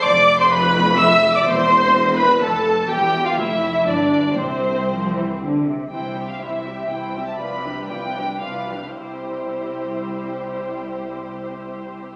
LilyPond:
<<
  \new Staff \with { instrumentName = "Violin section" } { \time 3/4 \key c \major \tempo 4 = 119 d'''8. c'''16 b''4 e'''8. d'''16 | c'''4. b''8 a''4 | g''8. f''16 e''4 d''4 | c''2 r4 |
g''8. f''16 e''4 g''8. a''16 | b''4 g''4 f''4 | c''2.~ | c''2. | }
  \new Staff \with { instrumentName = "Violin section" } { \time 3/4 \key c \major d''8. c''16 b'4 e''8. d''16 | c''4. b'8 a'4 | g'8. f'16 e'4 d'4 | c'2 r4 |
<e' c''>8 <g' e''>8 <e' c''>8 <g' e''>8 <e' c''>8 <g' e''>8 | <b' d''>8 <g' b'>8 <b' d''>8 <g' b'>8 <b' d''>8 <g' b'>8 | <g' c''>2.~ | <g' c''>2. | }
  \new Staff \with { instrumentName = "Viola section" } { \time 3/4 \key c \major d''8. c''16 b'4 e''8. d''16 | c''4. b'8 a'4 | g'8. f'16 e'4 d'4 | c'2 r4 |
<e e'>8 <g c'>8 <e e'>8 <g c'>8 <e e'>8 <g c'>8 | <f f'>8 <g d'>8 <f f'>8 <g d'>8 <f f'>8 <g d'>8 | <g e'>2.~ | <g e'>2. | }
  \new Staff \with { instrumentName = "Cello section" } { \clef bass \time 3/4 \key c \major f,2. | e,2 f,4 | e,4 f,4 g,4 | c4 f8 e8 d8 c8 |
c4 c4 c4 | c4 c4 c4 | c2.~ | c2. | }
  \new Staff \with { instrumentName = "Double bass section" } { \clef bass \time 3/4 \key c \major f,,2. | e,,2 f,,4 | e,,4 f,,4 g,,4 | c,2~ c,8 r8 |
c,4 c,4 c,4 | c,4 c,4 c,4 | c,2.~ | c,2. | }
>>